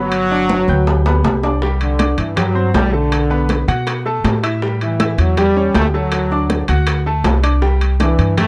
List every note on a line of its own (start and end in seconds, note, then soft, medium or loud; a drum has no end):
0.00 0.62 G1 medium
0.00 1.26 F#3 loud
0.00 0.24 B3 medium
0.00 0.24 B4 medium
0.00 0.25 B5 medium
0.12 high conga soft
0.12 high timbale medium
0.30 0.62 D4 medium
0.30 0.62 D5 medium
0.30 0.62 D6 medium
0.30 high conga soft
0.49 high conga medium
0.49 high timbale medium
0.68 1.20 D2 loud
0.68 0.99 B4 medium
0.68 0.99 G5 medium
0.68 1.00 G6 medium
0.68 high conga soft
0.87 high conga soft
0.87 low timbale medium
1.06 1.37 B3 medium
1.06 1.37 B4 medium
1.06 1.37 B5 medium
1.06 high conga soft
1.06 low timbale loud
1.24 2.12 C2 medium
1.24 high conga medium
1.24 low timbale loud
1.43 1.59 D4 medium
1.43 1.59 D5 medium
1.43 1.59 D6 medium
1.43 high conga soft
1.43 low timbale medium
1.62 1.93 G3 medium
1.62 1.93 G4 medium
1.62 1.93 G5 medium
1.62 high bongo medium
1.62 high conga soft
1.81 2.16 D3 medium
1.81 high conga soft
1.81 high timbale medium
1.99 2.30 D4 medium
1.99 2.30 D5 medium
1.99 2.30 D6 medium
1.99 high bongo medium
1.99 high conga loud
1.99 high timbale medium
1.99 low timbale medium
2.18 2.70 G2 loud
2.18 2.36 E3 medium
2.18 high conga soft
2.18 high timbale medium
2.36 2.74 F#3 loud
2.36 2.52 G3 medium
2.36 2.52 G4 medium
2.36 2.52 G5 medium
2.36 high bongo medium
2.36 high conga soft
2.36 low conga medium
2.36 high timbale medium
2.55 2.71 C4 medium
2.55 2.71 C5 medium
2.55 2.71 C6 medium
2.55 high conga soft
2.74 3.62 B1 medium
2.74 2.92 G3 loud
2.74 2.90 G4 medium
2.74 2.90 G5 medium
2.74 2.90 G6 medium
2.74 high bongo medium
2.74 low bongo medium
2.74 high conga medium
2.74 high timbale medium
2.74 low timbale medium
2.92 3.68 D3 loud
2.92 3.24 A3 medium
2.92 3.24 A4 medium
2.92 3.24 A5 medium
3.12 high bongo medium
3.12 high conga soft
3.12 high timbale medium
3.30 3.61 B3 medium
3.30 3.62 B4 medium
3.30 3.62 B5 medium
3.30 high bongo soft
3.30 high conga soft
3.49 high bongo medium
3.49 high conga medium
3.49 high timbale medium
3.49 low timbale medium
3.68 4.20 B2 loud
3.68 3.99 F#4 medium
3.68 3.99 F#5 medium
3.68 3.99 F#6 medium
3.68 high bongo soft
3.68 high conga soft
3.68 high timbale medium
3.87 high bongo medium
3.87 high conga soft
3.87 high timbale medium
4.05 4.36 A3 medium
4.05 4.37 A4 medium
4.05 4.37 A5 medium
4.05 high conga soft
4.24 5.12 A2 medium
4.24 high bongo medium
4.24 low bongo medium
4.24 high conga medium
4.24 high timbale medium
4.24 low timbale medium
4.43 4.59 E4 medium
4.43 4.59 E5 medium
4.43 4.59 E6 medium
4.43 high bongo soft
4.43 high timbale medium
4.62 4.93 G3 medium
4.62 4.93 G4 medium
4.62 4.93 G5 medium
4.62 high bongo medium
4.62 high conga soft
4.81 5.17 E3 medium
4.81 high conga soft
4.81 high timbale medium
5.00 5.31 E4 medium
5.00 5.31 E5 medium
5.00 5.31 E6 medium
5.00 high bongo medium
5.00 high conga loud
5.00 high timbale medium
5.00 low timbale medium
5.18 5.71 E2 loud
5.18 5.38 F#3 medium
5.18 high conga soft
5.18 high timbale medium
5.37 5.53 G3 medium
5.37 5.73 G3 loud
5.37 5.53 G4 medium
5.37 5.53 G5 medium
5.37 high bongo medium
5.37 high conga soft
5.37 low conga medium
5.37 high timbale medium
5.56 5.72 C#4 medium
5.56 5.72 C#5 medium
5.56 5.72 C#6 medium
5.56 high conga soft
5.74 6.63 D2 medium
5.74 5.85 A3 loud
5.74 5.90 G4 medium
5.74 5.90 G5 medium
5.74 5.91 G6 medium
5.74 high bongo medium
5.74 low bongo medium
5.74 high conga medium
5.74 high timbale medium
5.74 low timbale medium
5.94 6.65 F#3 loud
5.94 6.25 A3 medium
5.94 6.25 A4 medium
5.94 6.25 A5 medium
6.12 high bongo medium
6.12 high conga soft
6.12 high timbale medium
6.31 6.62 D4 medium
6.31 6.62 D5 medium
6.31 6.62 D6 medium
6.31 high bongo soft
6.31 high conga soft
6.50 high bongo medium
6.50 high conga medium
6.50 high timbale medium
6.50 low timbale soft
6.68 7.21 D2 medium
6.68 6.99 F#4 medium
6.68 7.00 F#5 medium
6.68 7.00 F#6 medium
6.68 high bongo soft
6.68 high conga soft
6.68 high timbale medium
6.87 high bongo medium
6.87 high conga soft
6.87 high timbale loud
7.06 7.37 A3 medium
7.06 7.37 A4 medium
7.06 7.37 A5 medium
7.06 high conga soft
7.24 8.12 C2 medium
7.24 high bongo medium
7.24 low bongo medium
7.24 high conga medium
7.24 high timbale medium
7.24 low timbale medium
7.43 7.59 D4 medium
7.43 7.59 D5 medium
7.43 7.59 D6 medium
7.43 high bongo soft
7.43 high conga soft
7.43 high timbale loud
7.62 7.93 G3 medium
7.62 7.93 G4 medium
7.62 7.93 G5 medium
7.62 high bongo medium
7.62 high conga soft
7.81 high conga soft
7.81 high timbale medium
8.00 8.35 E3 medium
8.00 8.31 D4 medium
8.00 8.31 D5 medium
8.00 8.31 D6 medium
8.00 high bongo medium
8.00 high conga medium
8.00 high timbale medium
8.00 low timbale medium
8.19 8.47 G2 loud
8.19 high conga soft
8.19 high timbale medium
8.37 8.47 G3 medium
8.37 8.47 A3 loud
8.37 8.47 G4 medium
8.37 8.47 G5 medium
8.37 high bongo medium
8.37 high conga soft
8.37 low conga medium
8.37 high timbale loud